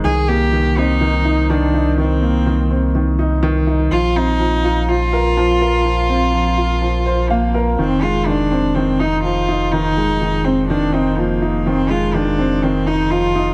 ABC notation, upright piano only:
X:1
M:4/4
L:1/8
Q:1/4=124
K:Cm
V:1 name="Upright piano" clef=bass
E, B, E, C E, E E, E | E, B, E, C E, E E, E | F, C F, F F, B F, B | F, C F, F F, c f B |
E, A, E, C E, E F, E | E, A, E, C E, E F, E | E, A, E, C E, E F, E |]